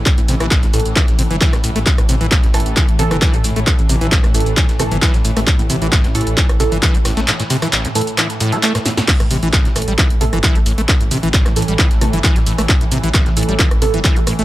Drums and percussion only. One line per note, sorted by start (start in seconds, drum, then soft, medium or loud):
0.06 kick loud
0.06 clap loud
0.06 closed hi-hat medium
0.06 tambourine medium
0.06 shaker soft
0.18 closed hi-hat medium
0.18 shaker soft
0.28 open hi-hat loud
0.28 tambourine medium
0.28 shaker medium
0.40 cross-stick medium
0.40 closed hi-hat soft
0.40 shaker soft
0.51 kick loud
0.51 snare loud
0.51 clap loud
0.51 closed hi-hat medium
0.51 tambourine medium
0.51 shaker soft
0.63 snare soft
0.63 closed hi-hat medium
0.63 shaker soft
0.74 open hi-hat loud
0.74 tambourine medium
0.74 shaker medium
0.80 closed hi-hat medium
0.85 closed hi-hat medium
0.85 shaker soft
0.96 kick loud
0.96 cross-stick medium
0.96 clap loud
0.96 closed hi-hat medium
0.96 tambourine medium
0.96 shaker soft
1.08 snare soft
1.08 closed hi-hat medium
1.08 shaker soft
1.19 open hi-hat loud
1.19 tambourine medium
1.19 shaker medium
1.31 closed hi-hat medium
1.31 shaker soft
1.41 kick loud
1.41 snare loud
1.41 clap loud
1.41 closed hi-hat medium
1.41 tambourine loud
1.41 shaker soft
1.53 cross-stick medium
1.53 snare medium
1.53 closed hi-hat medium
1.53 shaker soft
1.64 open hi-hat loud
1.64 tambourine medium
1.64 shaker medium
1.76 open hi-hat medium
1.76 shaker soft
1.86 kick loud
1.86 clap loud
1.86 closed hi-hat medium
1.86 tambourine medium
1.86 shaker soft
1.98 cross-stick medium
1.98 closed hi-hat medium
1.98 shaker soft
2.09 open hi-hat loud
2.09 tambourine medium
2.09 shaker medium
2.21 closed hi-hat soft
2.21 shaker soft
2.31 kick loud
2.31 snare loud
2.31 clap loud
2.31 closed hi-hat medium
2.31 tambourine medium
2.31 shaker soft
2.43 snare medium
2.43 closed hi-hat medium
2.54 cross-stick medium
2.54 open hi-hat loud
2.54 tambourine medium
2.54 shaker medium
2.60 closed hi-hat medium
2.66 closed hi-hat medium
2.66 shaker soft
2.77 kick loud
2.77 clap loud
2.77 closed hi-hat medium
2.77 tambourine medium
2.77 shaker soft
2.89 closed hi-hat medium
2.99 open hi-hat loud
2.99 tambourine medium
2.99 shaker medium
3.11 cross-stick medium
3.11 closed hi-hat medium
3.11 shaker soft
3.22 kick loud
3.22 snare loud
3.22 clap loud
3.22 closed hi-hat medium
3.22 tambourine medium
3.22 shaker soft
3.34 closed hi-hat medium
3.34 shaker soft
3.44 open hi-hat loud
3.44 tambourine medium
3.44 shaker medium
3.56 closed hi-hat medium
3.56 shaker soft
3.67 kick loud
3.67 cross-stick medium
3.67 clap loud
3.67 closed hi-hat medium
3.67 tambourine loud
3.67 shaker soft
3.79 closed hi-hat medium
3.79 shaker soft
3.89 open hi-hat loud
3.89 tambourine medium
3.89 shaker medium
4.01 closed hi-hat medium
4.01 shaker soft
4.12 kick loud
4.12 snare loud
4.12 clap loud
4.12 closed hi-hat medium
4.12 tambourine medium
4.12 shaker soft
4.24 cross-stick medium
4.24 snare soft
4.24 closed hi-hat soft
4.24 shaker soft
4.34 open hi-hat loud
4.34 tambourine medium
4.34 shaker medium
4.40 closed hi-hat medium
4.46 closed hi-hat medium
4.46 shaker soft
4.57 kick loud
4.57 clap loud
4.57 closed hi-hat medium
4.57 tambourine medium
4.57 shaker soft
4.69 snare soft
4.69 closed hi-hat medium
4.69 shaker soft
4.80 cross-stick medium
4.80 open hi-hat loud
4.80 tambourine medium
4.80 shaker medium
4.91 closed hi-hat medium
4.91 shaker soft
5.02 kick loud
5.02 snare loud
5.02 clap loud
5.02 closed hi-hat medium
5.02 tambourine medium
5.02 shaker soft
5.14 snare medium
5.14 closed hi-hat medium
5.14 shaker soft
5.25 open hi-hat loud
5.25 tambourine medium
5.25 shaker medium
5.37 cross-stick medium
5.37 open hi-hat medium
5.37 shaker soft
5.47 kick loud
5.47 clap loud
5.47 closed hi-hat medium
5.47 tambourine medium
5.47 shaker soft
5.59 closed hi-hat medium
5.59 shaker soft
5.70 open hi-hat loud
5.70 tambourine medium
5.70 shaker medium
5.82 closed hi-hat soft
5.82 shaker soft
5.92 kick loud
5.92 cross-stick medium
5.92 snare loud
5.92 clap loud
5.92 closed hi-hat medium
5.92 tambourine medium
5.92 shaker soft
6.04 snare medium
6.04 closed hi-hat medium
6.15 open hi-hat loud
6.15 tambourine medium
6.15 shaker medium
6.21 closed hi-hat medium
6.27 closed hi-hat medium
6.27 shaker soft
6.37 kick loud
6.37 clap loud
6.37 closed hi-hat medium
6.37 tambourine medium
6.37 shaker soft
6.49 cross-stick medium
6.49 closed hi-hat medium
6.60 open hi-hat medium
6.60 tambourine medium
6.60 shaker medium
6.72 closed hi-hat soft
6.72 shaker soft
6.83 kick loud
6.83 snare loud
6.83 clap loud
6.83 closed hi-hat medium
6.83 tambourine medium
6.83 shaker soft
6.95 closed hi-hat medium
6.95 shaker soft
7.05 cross-stick medium
7.05 snare loud
7.05 open hi-hat loud
7.05 tambourine medium
7.05 shaker medium
7.17 snare loud
7.17 closed hi-hat medium
7.17 tambourine medium
7.17 shaker soft
7.28 snare loud
7.28 clap loud
7.28 closed hi-hat medium
7.28 tambourine medium
7.28 shaker soft
7.40 snare loud
7.40 closed hi-hat medium
7.40 tambourine medium
7.40 shaker soft
7.50 snare loud
7.50 open hi-hat loud
7.50 tambourine medium
7.50 shaker medium
7.62 cross-stick medium
7.62 snare loud
7.62 closed hi-hat medium
7.62 tambourine medium
7.62 shaker soft
7.73 snare loud
7.73 clap loud
7.73 closed hi-hat medium
7.73 tambourine medium
7.73 shaker soft
7.85 snare soft
7.85 closed hi-hat medium
7.85 shaker soft
7.95 open hi-hat loud
7.95 tambourine medium
7.95 shaker medium
8.01 closed hi-hat medium
8.07 closed hi-hat medium
8.07 shaker soft
8.18 cross-stick medium
8.18 clap loud
8.18 closed hi-hat medium
8.18 tambourine medium
8.18 shaker soft
8.30 snare soft
8.30 closed hi-hat medium
8.30 shaker soft
8.40 snare loud
8.40 open hi-hat loud
8.40 tambourine medium
8.40 shaker medium
8.52 snare medium
8.52 closed hi-hat medium
8.52 shaker soft
8.63 clap loud
8.63 closed hi-hat medium
8.63 tambourine medium
8.63 shaker soft
8.75 cross-stick medium
8.75 snare loud
8.75 closed hi-hat medium
8.75 tambourine medium
8.75 shaker soft
8.86 snare medium
8.86 snare soft
8.86 open hi-hat loud
8.86 shaker medium
8.97 snare medium
8.97 open hi-hat medium
8.97 tambourine medium
8.97 shaker soft
9.08 kick loud
9.08 clap loud
9.08 closed hi-hat medium
9.08 tambourine loud
9.08 crash medium
9.08 shaker soft
9.20 cross-stick medium
9.20 closed hi-hat medium
9.20 shaker soft
9.31 open hi-hat loud
9.31 tambourine medium
9.31 shaker medium
9.43 closed hi-hat medium
9.43 shaker soft
9.53 kick loud
9.53 snare loud
9.53 clap loud
9.53 closed hi-hat medium
9.53 tambourine medium
9.53 shaker soft
9.65 snare medium
9.65 closed hi-hat medium
9.76 cross-stick medium
9.76 open hi-hat loud
9.76 tambourine medium
9.76 shaker medium
9.82 closed hi-hat medium
9.88 closed hi-hat medium
9.88 shaker soft
9.98 kick loud
9.98 clap loud
9.98 closed hi-hat medium
9.98 tambourine medium
9.98 shaker soft
10.10 closed hi-hat medium
10.21 open hi-hat loud
10.21 tambourine medium
10.21 shaker medium
10.33 cross-stick medium
10.33 closed hi-hat medium
10.33 shaker soft
10.43 kick loud
10.43 snare loud
10.43 clap loud
10.43 closed hi-hat medium
10.43 tambourine medium
10.43 shaker soft
10.55 closed hi-hat medium
10.55 shaker soft
10.66 open hi-hat loud
10.66 tambourine medium
10.66 shaker medium
10.78 closed hi-hat medium
10.78 shaker soft
10.89 kick loud
10.89 cross-stick medium
10.89 clap loud
10.89 closed hi-hat medium
10.89 tambourine medium
10.89 shaker soft
11.01 closed hi-hat medium
11.01 shaker soft
11.11 open hi-hat loud
11.11 tambourine medium
11.11 shaker medium
11.23 closed hi-hat medium
11.23 shaker soft
11.34 kick loud
11.34 snare loud
11.34 clap loud
11.34 closed hi-hat medium
11.34 tambourine medium
11.34 shaker soft
11.46 cross-stick medium
11.46 snare soft
11.46 closed hi-hat medium
11.46 shaker soft
11.56 open hi-hat loud
11.56 tambourine medium
11.56 shaker medium
11.62 closed hi-hat medium
11.68 closed hi-hat medium
11.68 shaker soft
11.79 kick loud
11.79 clap loud
11.79 closed hi-hat medium
11.79 tambourine medium
11.79 shaker soft
11.91 snare soft
11.91 closed hi-hat medium
11.91 shaker soft
12.01 cross-stick medium
12.01 open hi-hat loud
12.01 tambourine medium
12.01 shaker medium
12.13 closed hi-hat medium
12.13 shaker soft
12.24 kick loud
12.24 snare loud
12.24 clap loud
12.24 closed hi-hat medium
12.24 tambourine medium
12.24 shaker soft
12.36 snare soft
12.36 closed hi-hat medium
12.36 shaker soft
12.47 open hi-hat loud
12.47 tambourine medium
12.47 shaker medium
12.58 cross-stick medium
12.58 open hi-hat medium
12.58 shaker soft
12.69 kick loud
12.69 clap loud
12.69 closed hi-hat medium
12.69 tambourine medium
12.69 shaker soft
12.81 closed hi-hat medium
12.81 shaker soft
12.92 open hi-hat loud
12.92 tambourine medium
12.92 shaker medium
13.04 closed hi-hat medium
13.04 shaker soft
13.14 kick loud
13.14 cross-stick medium
13.14 snare loud
13.14 clap loud
13.14 closed hi-hat medium
13.14 tambourine medium
13.14 shaker soft
13.26 snare medium
13.26 closed hi-hat medium
13.37 open hi-hat loud
13.37 tambourine medium
13.37 shaker medium
13.43 closed hi-hat medium
13.49 closed hi-hat medium
13.49 shaker soft
13.59 kick loud
13.59 clap loud
13.59 closed hi-hat medium
13.59 tambourine medium
13.59 shaker soft
13.71 cross-stick medium
13.71 closed hi-hat medium
13.82 open hi-hat loud
13.82 tambourine medium
13.82 shaker medium
13.94 closed hi-hat medium
13.94 shaker soft
14.04 kick loud
14.04 snare loud
14.04 clap loud
14.04 closed hi-hat medium
14.04 tambourine medium
14.04 shaker soft
14.16 closed hi-hat medium
14.16 shaker soft
14.27 cross-stick medium
14.27 open hi-hat loud
14.27 tambourine medium
14.27 shaker medium
14.39 closed hi-hat medium
14.39 shaker soft